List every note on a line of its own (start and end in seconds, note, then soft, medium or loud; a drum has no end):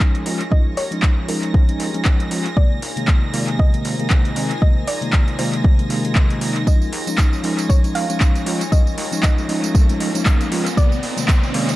0.00 0.23 F3 medium
0.00 0.23 G#3 medium
0.00 0.23 C#4 medium
0.00 0.24 D#4 medium
0.00 10.73 D#4 medium
0.00 4.22 F4 medium
0.00 10.73 F4 medium
0.00 2.53 G#4 medium
0.00 10.73 A#4 medium
0.00 2.53 C#5 medium
0.00 2.57 C#5 medium
0.00 0.22 D#5 loud
0.00 11.76 G#5 medium
0.00 11.76 A#6 medium
0.00 kick loud
0.00 clap loud
0.15 closed hi-hat medium
0.25 0.43 D#2 medium
0.25 0.40 F3 medium
0.25 0.41 G#3 medium
0.25 0.41 C#4 medium
0.25 0.41 F4 loud
0.25 open hi-hat loud
0.41 closed hi-hat medium
0.51 0.73 F3 medium
0.51 0.73 G#3 medium
0.51 0.73 C#4 medium
0.51 0.74 D#4 medium
0.51 0.78 D#5 loud
0.51 kick loud
0.77 0.94 D#2 loud
0.77 1.30 C#5 loud
0.77 open hi-hat loud
0.91 1.26 F3 medium
0.91 1.26 G#3 medium
0.91 1.26 C#4 medium
0.91 1.26 D#4 medium
0.91 closed hi-hat medium
1.02 kick loud
1.02 clap loud
1.28 1.46 D#1 medium
1.28 1.65 F3 medium
1.28 1.65 G#3 medium
1.28 1.65 C#4 medium
1.28 1.66 D#4 loud
1.28 2.01 A#4 medium
1.28 open hi-hat loud
1.43 closed hi-hat medium
1.54 kick loud
1.68 1.89 F3 medium
1.68 1.89 G#3 medium
1.68 1.89 C#4 medium
1.68 1.89 D#4 medium
1.68 closed hi-hat soft
1.80 1.97 D#2 medium
1.80 open hi-hat loud
1.94 2.28 F3 medium
1.94 2.28 G#3 medium
1.94 2.29 C#4 medium
1.94 2.29 D#4 loud
1.94 closed hi-hat medium
2.05 kick loud
2.05 clap loud
2.20 closed hi-hat medium
2.30 2.48 D#2 medium
2.30 2.46 F3 medium
2.30 2.46 G#3 medium
2.30 2.46 C#4 medium
2.30 2.46 F4 loud
2.30 open hi-hat loud
2.46 closed hi-hat medium
2.56 2.78 C3 medium
2.56 2.78 D#3 medium
2.56 2.78 G#3 medium
2.56 2.79 A#3 medium
2.56 8.32 D#4 medium
2.56 11.76 G#4 medium
2.56 6.63 C5 medium
2.56 3.62 D5 medium
2.56 kick loud
2.82 2.99 A#1 loud
2.82 open hi-hat loud
2.96 3.31 C3 medium
2.96 3.31 D#3 medium
2.96 3.31 G#3 medium
2.96 3.31 A#3 medium
2.96 closed hi-hat medium
3.07 6.67 C5 medium
3.07 kick loud
3.07 clap loud
3.33 3.51 A#2 medium
3.33 3.70 C3 loud
3.33 3.70 D#3 medium
3.33 3.70 G#3 medium
3.33 3.71 A#3 loud
3.33 open hi-hat loud
3.48 closed hi-hat medium
3.59 4.32 D#5 loud
3.59 kick loud
3.73 3.94 C3 medium
3.73 3.94 D#3 medium
3.73 3.94 G#3 medium
3.73 3.95 A#3 loud
3.73 closed hi-hat medium
3.85 4.02 A#1 medium
3.85 open hi-hat loud
3.99 4.33 C3 medium
3.99 4.33 D#3 medium
3.99 4.34 G#3 medium
3.99 4.34 A#3 loud
3.99 closed hi-hat medium
4.10 kick loud
4.10 clap loud
4.25 closed hi-hat soft
4.36 4.53 A#1 medium
4.36 4.51 C3 medium
4.36 4.51 D#3 medium
4.36 4.51 G#3 medium
4.36 4.51 C4 loud
4.36 open hi-hat loud
4.51 closed hi-hat medium
4.61 4.83 C3 medium
4.61 4.83 D#3 medium
4.61 4.84 G#3 medium
4.61 4.84 A#3 medium
4.61 4.88 D#5 loud
4.61 kick loud
4.87 5.04 A#1 loud
4.87 5.40 D5 loud
4.87 open hi-hat loud
5.01 5.36 C3 medium
5.01 5.36 D#3 medium
5.01 5.36 G#3 medium
5.01 5.36 A#3 medium
5.01 closed hi-hat medium
5.13 kick loud
5.13 clap loud
5.28 closed hi-hat soft
5.38 5.56 A#2 medium
5.38 5.75 C3 loud
5.38 5.75 D#3 medium
5.38 5.76 G#3 medium
5.38 5.76 A#3 loud
5.38 6.12 C5 medium
5.38 open hi-hat loud
5.53 closed hi-hat medium
5.64 kick loud
5.78 5.88 C3 medium
5.78 5.88 D#3 medium
5.78 5.88 G#3 medium
5.78 5.88 A#3 medium
5.78 closed hi-hat soft
5.89 6.07 A#1 medium
5.89 6.26 C3 medium
5.89 6.27 D#3 medium
5.89 6.27 G#3 medium
5.89 6.27 A#3 loud
5.89 open hi-hat loud
6.05 closed hi-hat medium
6.15 kick loud
6.15 clap loud
6.30 6.64 C3 medium
6.30 6.64 D#3 medium
6.30 6.64 G#3 medium
6.30 6.65 A#3 medium
6.30 closed hi-hat medium
6.41 6.58 A#1 loud
6.41 open hi-hat loud
6.56 closed hi-hat medium
6.66 6.88 F3 medium
6.66 6.89 G#3 medium
6.66 6.89 C#4 medium
6.66 6.89 D#4 medium
6.66 11.47 F4 medium
6.66 10.73 C#5 medium
6.66 7.73 D#5 medium
6.66 kick loud
6.66 tambourine medium
6.66 riser medium
6.82 tambourine soft
6.93 7.10 D#2 loud
6.93 10.77 C#5 medium
6.93 open hi-hat loud
7.07 7.41 F3 medium
7.07 7.41 G#3 medium
7.07 7.41 C#4 medium
7.07 7.42 D#4 medium
7.07 closed hi-hat medium
7.07 tambourine medium
7.18 kick loud
7.18 clap loud
7.18 tambourine medium
7.33 tambourine soft
7.43 7.80 F3 medium
7.43 7.81 G#3 medium
7.43 7.81 C#4 medium
7.43 7.81 D#4 loud
7.43 open hi-hat loud
7.58 closed hi-hat medium
7.58 tambourine medium
7.69 7.96 C#5 loud
7.69 kick loud
7.69 tambourine medium
7.84 8.04 F3 medium
7.84 8.04 G#3 medium
7.84 8.05 C#4 medium
7.84 8.05 D#4 medium
7.84 closed hi-hat medium
7.84 tambourine soft
7.95 8.12 D#2 medium
7.95 8.68 F5 loud
7.95 open hi-hat loud
8.09 8.44 F3 medium
8.09 8.44 G#3 medium
8.09 8.44 C#4 medium
8.09 8.44 D#4 loud
8.09 closed hi-hat medium
8.09 tambourine medium
8.20 kick loud
8.20 clap loud
8.20 tambourine medium
8.35 closed hi-hat medium
8.35 tambourine soft
8.46 8.63 D#2 medium
8.46 8.61 F3 medium
8.46 8.61 G#3 medium
8.46 8.61 C#4 medium
8.46 8.62 F4 loud
8.46 open hi-hat loud
8.61 closed hi-hat medium
8.61 tambourine medium
8.71 8.93 F3 medium
8.71 8.94 G#3 medium
8.71 8.94 C#4 medium
8.71 8.94 D#4 medium
8.71 9.22 D#5 loud
8.71 kick loud
8.71 tambourine medium
8.87 tambourine soft
8.98 9.15 D#2 loud
8.98 open hi-hat loud
9.12 9.46 F3 medium
9.12 9.46 G#3 medium
9.12 9.46 C#4 medium
9.12 9.47 D#4 medium
9.12 closed hi-hat medium
9.12 tambourine medium
9.23 9.71 D#5 medium
9.23 kick loud
9.23 clap loud
9.23 tambourine medium
9.38 tambourine soft
9.48 9.66 D#1 medium
9.48 9.85 F3 medium
9.48 9.86 G#3 medium
9.48 9.86 C#4 medium
9.48 9.86 D#4 loud
9.48 open hi-hat loud
9.64 closed hi-hat medium
9.64 tambourine medium
9.75 kick loud
9.75 tambourine medium
9.89 10.09 F3 medium
9.89 10.10 G#3 medium
9.89 10.10 C#4 medium
9.89 10.10 D#4 loud
9.89 closed hi-hat medium
9.89 tambourine soft
10.00 10.17 D#2 medium
10.00 open hi-hat loud
10.14 10.49 F3 medium
10.14 10.49 G#3 medium
10.14 10.49 C#4 medium
10.14 10.49 D#4 loud
10.14 closed hi-hat medium
10.14 tambourine medium
10.26 kick loud
10.26 clap loud
10.26 tambourine medium
10.41 closed hi-hat medium
10.41 tambourine soft
10.51 10.69 D#2 medium
10.51 10.66 F3 medium
10.51 10.66 G#3 medium
10.51 10.67 C#4 medium
10.51 10.67 F4 loud
10.51 open hi-hat loud
10.66 closed hi-hat medium
10.66 tambourine medium
10.77 10.99 C3 medium
10.77 10.99 D#3 medium
10.77 10.99 G#3 medium
10.77 10.99 A#3 medium
10.77 11.76 D#4 medium
10.77 11.76 F4 medium
10.77 11.76 A#4 medium
10.77 11.76 C5 medium
10.77 11.76 D5 loud
10.77 kick loud
10.77 tambourine medium
10.92 tambourine soft
11.03 11.20 A#1 loud
11.03 open hi-hat loud
11.17 11.51 C3 medium
11.17 11.51 D#3 medium
11.17 11.52 G#3 medium
11.17 11.52 A#3 medium
11.17 closed hi-hat medium
11.17 tambourine medium
11.28 kick loud
11.28 clap loud
11.28 tambourine medium
11.33 11.76 C5 medium
11.43 tambourine soft
11.53 11.71 A#2 medium
11.53 11.76 C3 loud
11.53 11.76 D#3 medium
11.53 11.76 G#3 medium
11.53 11.76 A#3 loud
11.53 open hi-hat loud
11.69 closed hi-hat medium
11.69 tambourine medium